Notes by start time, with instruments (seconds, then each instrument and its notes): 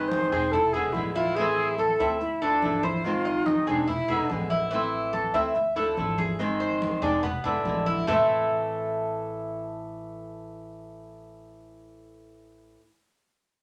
Already playing: upright bass G#1, nylon-string guitar D#3 G#3 C4 D#4 G#4, cuban tres D#5
0.08 flute C5, high conga
0.32 upright bass E1, nylon-string guitar G#3 C4 D#4 G#4, cuban tres G#4, high conga
0.52 cuban tres E4, flute A4, muted nylon-string guitar stroke, high conga, low conga
0.73 nylon-string guitar G#3 B3 E4, flute G#4, cuban tres G#4, high conga, low conga
0.77 nylon-string guitar D3
0.93 upright bass A1, nylon-string guitar D3 G#3 B3 E4, flute E4, high conga
1.14 cuban tres E4, flute F4, high conga
1.35 nylon-string guitar E3 A3 C4, cuban tres E4, flute G#4, high conga
1.40 nylon-string guitar E4
1.57 high conga
1.78 flute A4, cuban tres A4, high conga
1.99 upright bass D2, nylon-string guitar A3 C4 E4, cuban tres E5, high conga
2.20 flute E4, muted nylon-string guitar stroke, high conga
2.42 nylon-string guitar F3 A3 D4 E4, flute D4, cuban tres A4, high conga
2.62 upright bass G#1, nylon-string guitar F3 A3 D4 E4, high conga
2.83 flute E4, cuban tres C5, high conga
3.04 nylon-string guitar D#3 G#3 C4 D#4 G#4, flute F4, high conga
3.25 cuban tres D#5, high conga
3.46 flute D#4, high conga
3.67 upright bass E1, nylon-string guitar G#3 C4 D#4 G#4, flute D4, cuban tres G#4, high conga
3.88 cuban tres E4, flute E4, muted nylon-string guitar stroke, high conga, low conga
4.08 nylon-string guitar D3 G#3 B3 E4, cuban tres G#4, high conga, low conga
4.30 upright bass A1, nylon-string guitar D3 G#3 B3 E4, high conga
4.50 cuban tres E4, high conga
4.71 nylon-string guitar E3 A3 C4 E4, cuban tres E4, high conga
4.93 high conga
5.13 cuban tres A4, high conga
5.34 upright bass D2, nylon-string guitar A3 C4 E4, cuban tres E5, high conga
5.55 muted nylon-string guitar stroke, high conga
5.76 nylon-string guitar F3 A3 D4 E4, cuban tres A4, high conga
5.97 upright bass G#1, nylon-string guitar F3 A3 D4 E4, high conga
6.18 cuban tres G#4, high conga
6.39 nylon-string guitar D#3 G#3 C4 D#4 G#4
6.60 cuban tres C5, high conga
6.82 high conga
7.02 upright bass E1, nylon-string guitar G#3 C4 D#4 G#4, cuban tres D4, high conga
7.23 cuban tres B3, muted nylon-string guitar stroke, high conga, low conga
7.44 upright bass G#1, nylon-string guitar D3 G#3 B3 E4, cuban tres D4, high conga, low conga
7.65 upright bass A1, nylon-string guitar D3 G#3 B3 E4, high conga
7.86 cuban tres E4, high conga
8.07 upright bass A1, nylon-string guitar A2 E3 A3 C4 E4, cuban tres A3 E4 A4, low conga